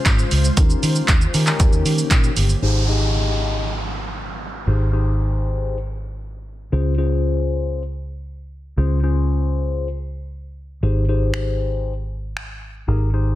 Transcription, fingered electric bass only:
0.06 0.22 G#2 medium
0.32 0.48 C#2 medium
0.57 0.74 D#2 loud
0.83 0.99 D#3 loud
1.08 1.25 D#2 loud
1.34 1.51 D#3 medium
1.60 1.68 D#2 loud
1.72 1.81 D#2 loud
1.85 2.02 D#3 loud
2.11 2.28 A#2 loud
2.37 2.53 G1 loud
2.62 4.63 G#1 medium
4.67 6.68 G#1 medium
6.72 8.74 C#2 medium
8.77 10.79 C#2 medium
10.83 12.84 G#1 medium
12.88 13.35 G#1 medium

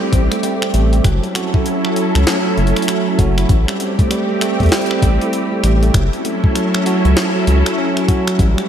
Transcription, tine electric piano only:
0.00 0.43 G3 medium
0.00 0.32 A3 medium
0.00 1.06 E4 medium
0.00 1.06 G4 medium
0.32 0.42 A3 medium
0.43 0.53 G3 medium
0.74 0.84 A3 medium
1.04 1.22 F#3 medium
1.35 1.52 F#4 medium
1.54 1.60 E4 medium
1.85 1.95 F#3 medium
2.15 2.25 A3 medium
2.27 2.37 F#3 medium
2.58 2.67 A3 medium
2.88 3.06 F#3 medium
3.19 3.35 F#4 medium
3.38 3.44 E4 medium
3.68 3.78 G3 medium
3.99 4.09 A3 medium
4.10 4.20 G3 medium
4.41 4.51 A3 medium
4.72 4.90 G3 medium
5.02 5.19 G4 medium
5.21 5.27 E4 medium
5.52 5.62 G3 medium
5.83 5.93 A3 medium
5.94 6.04 F#3 medium
6.25 6.35 A3 medium
6.55 6.73 F#3 medium
6.86 7.03 F#4 medium
7.05 7.11 E4 medium
7.36 7.46 F#3 medium
7.47 7.64 C#4 medium
7.66 7.77 F#3 medium
7.78 7.95 C#4 medium
8.08 8.27 F#4 medium
8.28 8.34 F#3 medium
8.39 8.57 G3 medium

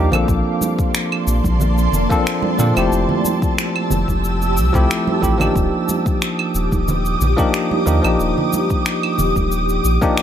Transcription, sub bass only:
0.13 0.25 A#1 medium
0.28 0.42 A#1 medium
1.27 1.41 A#1 medium
1.45 1.88 A#1 loud
1.93 2.07 F1 loud
2.59 2.73 A#2 medium
2.77 2.89 F1 medium
2.92 3.06 F1 medium
3.91 4.05 F1 medium
4.08 4.59 F1 loud
4.58 4.71 C2 medium
4.74 4.86 C2 loud
5.22 5.49 A1 loud
5.56 5.69 D#1 medium
6.55 6.68 D#1 medium
6.72 7.15 D#1 loud
7.21 7.35 A#1 loud
7.87 8.00 D#2 medium
8.04 8.16 A#1 medium
8.20 8.33 D#1 medium
9.19 9.32 D#1 medium
9.36 9.79 D#1 loud
9.85 9.98 A#1 loud

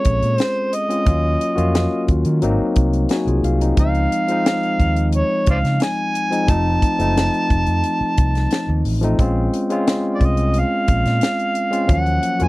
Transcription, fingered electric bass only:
0.06 0.19 A#1 medium
0.22 0.36 A#2 medium
1.07 1.34 D#2 loud
1.58 1.85 F2 medium
2.09 2.22 D#2 medium
2.26 2.39 D#3 medium
2.42 2.56 G#1 medium
2.60 muted fingered electric bass stroke soft
2.77 3.04 C2 medium
3.27 3.40 C2 medium
3.43 3.70 C2 medium
3.78 4.05 C#2 medium
4.80 5.20 D#2 medium
5.48 5.61 C#2 medium
5.64 5.77 C#3 medium
6.48 6.75 F1 loud
6.99 7.26 F#1 medium
7.51 7.64 F1 medium
7.67 7.80 F2 medium
8.01 muted fingered electric bass stroke soft
8.18 8.45 C2 medium
8.69 8.82 D#2 medium
8.85 9.12 A1 medium
9.19 9.46 A#1 medium
10.21 10.61 C2 medium
10.89 11.02 A#1 medium
11.05 11.19 A#2 medium
11.90 12.17 D#2 medium
12.41 12.48 F2 medium

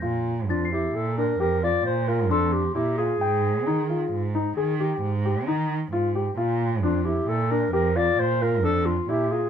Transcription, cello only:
0.03 0.51 A#2 medium
0.49 0.91 F2 medium
0.94 1.36 A#2 medium
1.40 1.82 F2 medium
1.85 2.32 A#2 medium
2.30 2.72 F2 medium
2.76 3.18 A#2 medium
3.21 3.68 G#2 medium
3.66 4.08 D#3 medium
4.12 4.53 G#2 medium
4.57 4.98 D#3 medium
5.02 5.49 G#2 medium
5.47 5.88 D#3 medium
5.92 6.33 G#2 medium
6.37 6.84 A#2 medium
6.82 7.24 F2 medium
7.28 7.69 A#2 medium
7.72 8.14 F2 medium
8.18 8.65 A#2 medium
8.63 9.05 F2 medium
9.09 9.50 A#2 medium

